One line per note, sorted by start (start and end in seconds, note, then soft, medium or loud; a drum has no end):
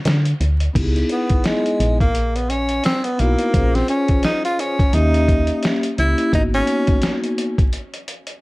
0.05 0.34 D3 loud
0.05 snare loud
0.05 closed hi-hat medium
0.26 closed hi-hat medium
0.40 0.69 D2 medium
0.40 closed hi-hat medium
0.60 closed hi-hat medium
0.73 1.04 C#2 loud
0.73 1.95 B3 medium
0.73 1.95 D#4 medium
0.73 1.96 E4 medium
0.73 0.83 G4 medium
0.73 kick loud
0.73 closed hi-hat loud
0.73 crash medium
0.83 2.00 G#4 medium
0.96 closed hi-hat soft
1.09 1.48 B3 medium
1.09 closed hi-hat medium
1.29 kick medium
1.29 closed hi-hat medium
1.44 2.00 G#3 medium
1.44 snare loud
1.44 closed hi-hat medium
1.66 closed hi-hat soft
1.80 2.80 A#1 medium
1.80 closed hi-hat medium
2.01 2.37 A#3 medium
2.01 kick medium
2.01 closed hi-hat soft
2.15 closed hi-hat medium
2.36 2.51 B3 medium
2.36 closed hi-hat soft
2.50 2.85 C#4 medium
2.50 closed hi-hat medium
2.69 closed hi-hat medium
2.84 3.06 C4 loud
2.84 snare loud
2.84 closed hi-hat medium
3.04 3.21 B3 medium
3.04 closed hi-hat medium
3.17 3.36 B1 medium
3.17 3.76 A#3 loud
3.17 3.49 B3 medium
3.17 3.49 D#4 medium
3.17 3.50 E4 medium
3.17 3.50 F#4 medium
3.17 closed hi-hat medium
3.39 closed hi-hat medium
3.52 3.83 A#1 loud
3.52 4.75 C#4 medium
3.52 4.75 F4 medium
3.52 4.76 G#4 medium
3.52 4.74 C5 medium
3.52 kick loud
3.52 closed hi-hat loud
3.75 3.89 C4 loud
3.75 snare soft
3.75 closed hi-hat soft
3.88 4.22 C#4 medium
3.88 closed hi-hat medium
4.08 kick medium
4.08 closed hi-hat medium
4.23 4.43 D#4 loud
4.23 snare loud
4.23 closed hi-hat medium
4.45 4.61 F4 loud
4.45 closed hi-hat medium
4.59 4.96 C#4 medium
4.59 closed hi-hat medium
4.79 kick medium
4.79 closed hi-hat soft
4.91 5.51 D#2 loud
4.91 5.84 A#3 medium
4.91 5.84 C#4 medium
4.91 5.73 D#4 loud
4.91 5.86 G4 medium
4.91 5.85 E5 medium
4.91 closed hi-hat medium
5.14 closed hi-hat soft
5.28 kick medium
5.28 closed hi-hat medium
5.47 closed hi-hat medium
5.63 snare loud
5.63 closed hi-hat medium
5.83 closed hi-hat medium
5.96 6.15 C#2 medium
5.96 6.28 A#3 medium
5.96 6.28 C#4 medium
5.96 6.29 E4 medium
5.96 6.31 E4 loud
5.96 6.29 G4 medium
5.96 closed hi-hat medium
6.18 closed hi-hat medium
6.31 6.62 G#1 loud
6.31 7.53 A#3 medium
6.31 7.54 B3 medium
6.31 7.54 D#4 medium
6.31 6.43 D#4 loud
6.31 7.55 F#4 medium
6.31 kick loud
6.31 closed hi-hat loud
6.54 7.19 C#4 loud
6.54 closed hi-hat soft
6.67 closed hi-hat medium
6.87 kick medium
6.87 closed hi-hat medium
7.02 snare medium
7.02 closed hi-hat medium
7.24 closed hi-hat medium
7.38 closed hi-hat medium
7.58 kick medium
7.58 closed hi-hat soft
7.73 closed hi-hat medium
7.94 closed hi-hat soft
8.08 closed hi-hat medium
8.27 closed hi-hat medium